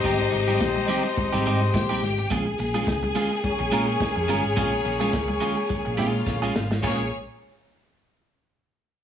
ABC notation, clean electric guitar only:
X:1
M:4/4
L:1/16
Q:"Swing 16ths" 1/4=106
K:Bbdor
V:1 name="Clean electric guitar"
[G,CEG] z2 [G,CEG] z2 [G,CEG] z2 [G,CEG] [G,CEG] z2 [G,CEG] z2 | [A,DFA] z2 [A,DFA] z2 [A,DFA] z3 [A,DFB] z3 [A,DFB] z | [A,DFA] z2 [A,DFA] z2 [A,DFA] z3 [A,DFA] z2 [A,DFA] z2 | [A,DFA] z12 z3 |]